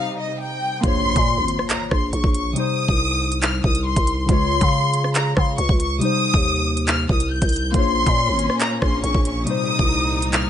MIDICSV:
0, 0, Header, 1, 7, 480
1, 0, Start_track
1, 0, Tempo, 431655
1, 929, Time_signature, 4, 2, 24, 8
1, 11674, End_track
2, 0, Start_track
2, 0, Title_t, "Violin section"
2, 0, Program_c, 0, 48
2, 0, Note_on_c, 0, 77, 83
2, 178, Note_off_c, 0, 77, 0
2, 209, Note_on_c, 0, 75, 85
2, 417, Note_off_c, 0, 75, 0
2, 447, Note_on_c, 0, 79, 92
2, 899, Note_off_c, 0, 79, 0
2, 927, Note_on_c, 0, 84, 127
2, 1843, Note_off_c, 0, 84, 0
2, 1887, Note_on_c, 0, 82, 88
2, 2096, Note_off_c, 0, 82, 0
2, 2126, Note_on_c, 0, 84, 89
2, 2336, Note_off_c, 0, 84, 0
2, 2368, Note_on_c, 0, 85, 85
2, 2577, Note_off_c, 0, 85, 0
2, 2607, Note_on_c, 0, 85, 85
2, 2817, Note_off_c, 0, 85, 0
2, 2849, Note_on_c, 0, 87, 120
2, 3764, Note_off_c, 0, 87, 0
2, 3810, Note_on_c, 0, 89, 87
2, 4018, Note_off_c, 0, 89, 0
2, 4047, Note_on_c, 0, 87, 92
2, 4256, Note_off_c, 0, 87, 0
2, 4287, Note_on_c, 0, 84, 88
2, 4739, Note_off_c, 0, 84, 0
2, 4769, Note_on_c, 0, 84, 121
2, 5684, Note_off_c, 0, 84, 0
2, 5729, Note_on_c, 0, 82, 86
2, 5937, Note_off_c, 0, 82, 0
2, 5969, Note_on_c, 0, 84, 89
2, 6178, Note_off_c, 0, 84, 0
2, 6209, Note_on_c, 0, 85, 90
2, 6417, Note_off_c, 0, 85, 0
2, 6450, Note_on_c, 0, 85, 88
2, 6658, Note_off_c, 0, 85, 0
2, 6687, Note_on_c, 0, 87, 127
2, 7603, Note_off_c, 0, 87, 0
2, 7648, Note_on_c, 0, 89, 87
2, 7857, Note_off_c, 0, 89, 0
2, 7888, Note_on_c, 0, 87, 89
2, 8097, Note_off_c, 0, 87, 0
2, 8127, Note_on_c, 0, 91, 89
2, 8579, Note_off_c, 0, 91, 0
2, 8607, Note_on_c, 0, 84, 127
2, 9523, Note_off_c, 0, 84, 0
2, 9568, Note_on_c, 0, 82, 90
2, 9777, Note_off_c, 0, 82, 0
2, 9807, Note_on_c, 0, 84, 91
2, 10017, Note_off_c, 0, 84, 0
2, 10048, Note_on_c, 0, 85, 86
2, 10257, Note_off_c, 0, 85, 0
2, 10288, Note_on_c, 0, 85, 83
2, 10497, Note_off_c, 0, 85, 0
2, 10529, Note_on_c, 0, 87, 119
2, 11444, Note_off_c, 0, 87, 0
2, 11492, Note_on_c, 0, 89, 85
2, 11674, Note_off_c, 0, 89, 0
2, 11674, End_track
3, 0, Start_track
3, 0, Title_t, "Synth keys"
3, 0, Program_c, 1, 88
3, 0, Control_c, 1, 64, 127
3, 0, Note_on_c, 1, 48, 66
3, 0, Note_on_c, 1, 55, 59
3, 0, Note_on_c, 1, 63, 64
3, 0, Note_on_c, 1, 72, 74
3, 871, Note_off_c, 1, 48, 0
3, 883, Note_off_c, 1, 55, 0
3, 896, Note_off_c, 1, 63, 0
3, 898, Note_on_c, 1, 58, 70
3, 909, Note_off_c, 1, 72, 0
3, 923, Note_on_c, 1, 65, 65
3, 943, Control_c, 1, 64, 0
3, 948, Note_on_c, 1, 72, 65
3, 973, Note_on_c, 1, 73, 78
3, 1132, Control_c, 1, 64, 127
3, 2794, Note_off_c, 1, 58, 0
3, 2807, Note_off_c, 1, 65, 0
3, 2811, Note_on_c, 1, 48, 68
3, 2820, Note_off_c, 1, 72, 0
3, 2832, Note_off_c, 1, 73, 0
3, 2836, Note_on_c, 1, 55, 65
3, 2860, Control_c, 1, 64, 0
3, 2861, Note_on_c, 1, 63, 68
3, 2886, Note_on_c, 1, 72, 78
3, 3033, Control_c, 1, 64, 127
3, 4711, Note_off_c, 1, 48, 0
3, 4724, Note_off_c, 1, 55, 0
3, 4734, Note_on_c, 1, 49, 66
3, 4736, Note_off_c, 1, 63, 0
3, 4749, Note_off_c, 1, 72, 0
3, 4758, Note_on_c, 1, 56, 64
3, 4783, Note_on_c, 1, 65, 60
3, 4784, Control_c, 1, 64, 0
3, 4808, Note_on_c, 1, 73, 83
3, 5007, Control_c, 1, 64, 127
3, 6632, Note_off_c, 1, 49, 0
3, 6645, Note_off_c, 1, 56, 0
3, 6651, Note_on_c, 1, 48, 67
3, 6658, Note_off_c, 1, 65, 0
3, 6670, Note_off_c, 1, 73, 0
3, 6676, Note_on_c, 1, 55, 61
3, 6700, Note_on_c, 1, 63, 62
3, 6703, Control_c, 1, 64, 0
3, 6725, Note_on_c, 1, 72, 77
3, 6911, Control_c, 1, 64, 127
3, 8551, Note_off_c, 1, 48, 0
3, 8563, Note_off_c, 1, 55, 0
3, 8576, Note_off_c, 1, 63, 0
3, 8578, Note_on_c, 1, 58, 73
3, 8589, Note_off_c, 1, 72, 0
3, 8603, Note_on_c, 1, 65, 68
3, 8624, Control_c, 1, 64, 0
3, 8627, Note_on_c, 1, 72, 64
3, 8652, Note_on_c, 1, 73, 77
3, 8813, Control_c, 1, 64, 127
3, 10474, Note_off_c, 1, 58, 0
3, 10487, Note_off_c, 1, 65, 0
3, 10493, Note_on_c, 1, 48, 68
3, 10499, Note_off_c, 1, 72, 0
3, 10512, Note_off_c, 1, 73, 0
3, 10518, Note_on_c, 1, 55, 66
3, 10541, Control_c, 1, 64, 0
3, 10542, Note_on_c, 1, 63, 67
3, 10567, Note_on_c, 1, 72, 79
3, 10709, Control_c, 1, 64, 127
3, 11674, Note_off_c, 1, 48, 0
3, 11674, Note_off_c, 1, 55, 0
3, 11674, Note_off_c, 1, 63, 0
3, 11674, Note_off_c, 1, 72, 0
3, 11674, End_track
4, 0, Start_track
4, 0, Title_t, "String section"
4, 0, Program_c, 2, 48
4, 0, Note_on_c, 2, 48, 80
4, 0, Note_on_c, 2, 55, 72
4, 0, Note_on_c, 2, 63, 86
4, 909, Note_off_c, 2, 48, 0
4, 909, Note_off_c, 2, 55, 0
4, 909, Note_off_c, 2, 63, 0
4, 8609, Note_on_c, 2, 46, 82
4, 8609, Note_on_c, 2, 58, 74
4, 8609, Note_on_c, 2, 61, 92
4, 10510, Note_off_c, 2, 58, 0
4, 10510, Note_off_c, 2, 61, 0
4, 10528, Note_on_c, 2, 55, 74
4, 10528, Note_on_c, 2, 63, 90
4, 11674, Note_off_c, 2, 46, 0
4, 11674, Note_off_c, 2, 55, 0
4, 11674, Note_off_c, 2, 63, 0
4, 11674, End_track
5, 0, Start_track
5, 0, Title_t, "808-style bass"
5, 0, Program_c, 3, 38
5, 929, Note_on_c, 3, 34, 113
5, 1274, Note_off_c, 3, 34, 0
5, 1288, Note_on_c, 3, 46, 111
5, 1528, Note_on_c, 3, 32, 105
5, 1544, Note_off_c, 3, 46, 0
5, 1756, Note_off_c, 3, 32, 0
5, 2127, Note_on_c, 3, 34, 108
5, 2358, Note_off_c, 3, 34, 0
5, 2368, Note_on_c, 3, 34, 106
5, 2483, Note_off_c, 3, 34, 0
5, 2489, Note_on_c, 3, 34, 109
5, 2834, Note_off_c, 3, 34, 0
5, 3208, Note_on_c, 3, 36, 105
5, 4014, Note_off_c, 3, 36, 0
5, 4047, Note_on_c, 3, 36, 105
5, 4394, Note_off_c, 3, 36, 0
5, 4409, Note_on_c, 3, 36, 108
5, 4754, Note_off_c, 3, 36, 0
5, 4768, Note_on_c, 3, 37, 116
5, 5114, Note_off_c, 3, 37, 0
5, 5128, Note_on_c, 3, 49, 107
5, 5935, Note_off_c, 3, 49, 0
5, 5968, Note_on_c, 3, 49, 104
5, 6198, Note_off_c, 3, 49, 0
5, 6209, Note_on_c, 3, 37, 110
5, 6324, Note_off_c, 3, 37, 0
5, 6328, Note_on_c, 3, 37, 107
5, 6674, Note_off_c, 3, 37, 0
5, 7048, Note_on_c, 3, 39, 107
5, 7855, Note_off_c, 3, 39, 0
5, 7888, Note_on_c, 3, 36, 106
5, 8234, Note_off_c, 3, 36, 0
5, 8249, Note_on_c, 3, 36, 109
5, 8594, Note_off_c, 3, 36, 0
5, 8608, Note_on_c, 3, 34, 113
5, 8954, Note_off_c, 3, 34, 0
5, 8968, Note_on_c, 3, 46, 106
5, 9209, Note_on_c, 3, 32, 98
5, 9225, Note_off_c, 3, 46, 0
5, 9437, Note_off_c, 3, 32, 0
5, 9808, Note_on_c, 3, 34, 109
5, 10038, Note_off_c, 3, 34, 0
5, 10048, Note_on_c, 3, 34, 107
5, 10163, Note_off_c, 3, 34, 0
5, 10168, Note_on_c, 3, 34, 108
5, 10514, Note_off_c, 3, 34, 0
5, 10888, Note_on_c, 3, 36, 102
5, 11674, Note_off_c, 3, 36, 0
5, 11674, End_track
6, 0, Start_track
6, 0, Title_t, "Impact"
6, 0, Program_c, 4, 103
6, 928, Note_on_c, 4, 60, 90
6, 2848, Note_off_c, 4, 60, 0
6, 11674, End_track
7, 0, Start_track
7, 0, Title_t, "Drums"
7, 929, Note_on_c, 9, 36, 118
7, 929, Note_on_c, 9, 42, 84
7, 1040, Note_off_c, 9, 36, 0
7, 1040, Note_off_c, 9, 42, 0
7, 1288, Note_on_c, 9, 36, 97
7, 1289, Note_on_c, 9, 42, 74
7, 1399, Note_off_c, 9, 36, 0
7, 1400, Note_off_c, 9, 42, 0
7, 1649, Note_on_c, 9, 42, 84
7, 1760, Note_off_c, 9, 42, 0
7, 1769, Note_on_c, 9, 37, 74
7, 1880, Note_off_c, 9, 37, 0
7, 1888, Note_on_c, 9, 42, 90
7, 1889, Note_on_c, 9, 39, 113
7, 2000, Note_off_c, 9, 39, 0
7, 2000, Note_off_c, 9, 42, 0
7, 2128, Note_on_c, 9, 36, 89
7, 2128, Note_on_c, 9, 37, 110
7, 2239, Note_off_c, 9, 36, 0
7, 2239, Note_off_c, 9, 37, 0
7, 2368, Note_on_c, 9, 42, 78
7, 2480, Note_off_c, 9, 42, 0
7, 2489, Note_on_c, 9, 36, 97
7, 2600, Note_off_c, 9, 36, 0
7, 2608, Note_on_c, 9, 42, 94
7, 2719, Note_off_c, 9, 42, 0
7, 2848, Note_on_c, 9, 42, 84
7, 2959, Note_off_c, 9, 42, 0
7, 3208, Note_on_c, 9, 36, 98
7, 3319, Note_off_c, 9, 36, 0
7, 3688, Note_on_c, 9, 42, 89
7, 3799, Note_off_c, 9, 42, 0
7, 3808, Note_on_c, 9, 42, 91
7, 3809, Note_on_c, 9, 39, 116
7, 3919, Note_off_c, 9, 42, 0
7, 3920, Note_off_c, 9, 39, 0
7, 4048, Note_on_c, 9, 36, 86
7, 4159, Note_off_c, 9, 36, 0
7, 4168, Note_on_c, 9, 42, 82
7, 4279, Note_off_c, 9, 42, 0
7, 4408, Note_on_c, 9, 42, 83
7, 4409, Note_on_c, 9, 36, 99
7, 4519, Note_off_c, 9, 42, 0
7, 4520, Note_off_c, 9, 36, 0
7, 4528, Note_on_c, 9, 42, 94
7, 4639, Note_off_c, 9, 42, 0
7, 4768, Note_on_c, 9, 36, 122
7, 4768, Note_on_c, 9, 42, 84
7, 4879, Note_off_c, 9, 36, 0
7, 4879, Note_off_c, 9, 42, 0
7, 5128, Note_on_c, 9, 36, 99
7, 5128, Note_on_c, 9, 42, 77
7, 5239, Note_off_c, 9, 36, 0
7, 5239, Note_off_c, 9, 42, 0
7, 5488, Note_on_c, 9, 42, 86
7, 5599, Note_off_c, 9, 42, 0
7, 5608, Note_on_c, 9, 37, 72
7, 5719, Note_off_c, 9, 37, 0
7, 5728, Note_on_c, 9, 39, 113
7, 5728, Note_on_c, 9, 42, 93
7, 5839, Note_off_c, 9, 42, 0
7, 5840, Note_off_c, 9, 39, 0
7, 5968, Note_on_c, 9, 36, 93
7, 5968, Note_on_c, 9, 37, 108
7, 6079, Note_off_c, 9, 36, 0
7, 6079, Note_off_c, 9, 37, 0
7, 6208, Note_on_c, 9, 42, 78
7, 6319, Note_off_c, 9, 42, 0
7, 6329, Note_on_c, 9, 36, 99
7, 6440, Note_off_c, 9, 36, 0
7, 6448, Note_on_c, 9, 42, 91
7, 6559, Note_off_c, 9, 42, 0
7, 6688, Note_on_c, 9, 42, 85
7, 6799, Note_off_c, 9, 42, 0
7, 7048, Note_on_c, 9, 36, 96
7, 7159, Note_off_c, 9, 36, 0
7, 7528, Note_on_c, 9, 42, 91
7, 7639, Note_off_c, 9, 42, 0
7, 7648, Note_on_c, 9, 42, 86
7, 7649, Note_on_c, 9, 39, 117
7, 7759, Note_off_c, 9, 42, 0
7, 7760, Note_off_c, 9, 39, 0
7, 7888, Note_on_c, 9, 36, 92
7, 7999, Note_off_c, 9, 36, 0
7, 8008, Note_on_c, 9, 42, 83
7, 8119, Note_off_c, 9, 42, 0
7, 8248, Note_on_c, 9, 42, 70
7, 8249, Note_on_c, 9, 36, 96
7, 8329, Note_off_c, 9, 42, 0
7, 8329, Note_on_c, 9, 42, 70
7, 8360, Note_off_c, 9, 36, 0
7, 8368, Note_on_c, 9, 46, 65
7, 8408, Note_off_c, 9, 42, 0
7, 8408, Note_on_c, 9, 42, 71
7, 8479, Note_off_c, 9, 46, 0
7, 8520, Note_off_c, 9, 42, 0
7, 8608, Note_on_c, 9, 36, 120
7, 8608, Note_on_c, 9, 42, 82
7, 8719, Note_off_c, 9, 42, 0
7, 8720, Note_off_c, 9, 36, 0
7, 8968, Note_on_c, 9, 36, 99
7, 8968, Note_on_c, 9, 42, 77
7, 9079, Note_off_c, 9, 36, 0
7, 9079, Note_off_c, 9, 42, 0
7, 9329, Note_on_c, 9, 42, 82
7, 9440, Note_off_c, 9, 42, 0
7, 9449, Note_on_c, 9, 37, 75
7, 9560, Note_off_c, 9, 37, 0
7, 9569, Note_on_c, 9, 39, 119
7, 9569, Note_on_c, 9, 42, 89
7, 9680, Note_off_c, 9, 39, 0
7, 9680, Note_off_c, 9, 42, 0
7, 9808, Note_on_c, 9, 36, 90
7, 9808, Note_on_c, 9, 37, 107
7, 9919, Note_off_c, 9, 36, 0
7, 9920, Note_off_c, 9, 37, 0
7, 10049, Note_on_c, 9, 42, 77
7, 10160, Note_off_c, 9, 42, 0
7, 10169, Note_on_c, 9, 36, 96
7, 10280, Note_off_c, 9, 36, 0
7, 10289, Note_on_c, 9, 42, 90
7, 10400, Note_off_c, 9, 42, 0
7, 10528, Note_on_c, 9, 42, 86
7, 10639, Note_off_c, 9, 42, 0
7, 10888, Note_on_c, 9, 36, 102
7, 10999, Note_off_c, 9, 36, 0
7, 11368, Note_on_c, 9, 42, 91
7, 11480, Note_off_c, 9, 42, 0
7, 11489, Note_on_c, 9, 39, 119
7, 11489, Note_on_c, 9, 42, 88
7, 11600, Note_off_c, 9, 39, 0
7, 11600, Note_off_c, 9, 42, 0
7, 11674, End_track
0, 0, End_of_file